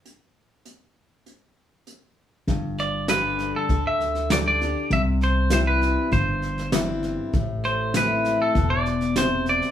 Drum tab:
HH |x---x---x---x---|----p-------p---|----p-------p---|----p-------p---|
SD |----------------|o-o-o-o-o-ooo-o-|o-o-o-o-o-ooo-o-|o-o-o-o-o-ooo-oo|
BD |----------------|o-------o-------|o-------o-------|o-------o-------|